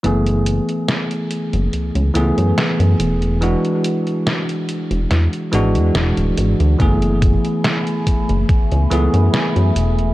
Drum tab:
HH |xxxxxxxxxxxxxxxx|xxxxxxxxxxxxxxxx|xxxxxxxxxxxxxxxx|
SD |----o-------o---|----o---o---o---|----o-------o---|
BD |----------------|----------------|o-o---o-o-------|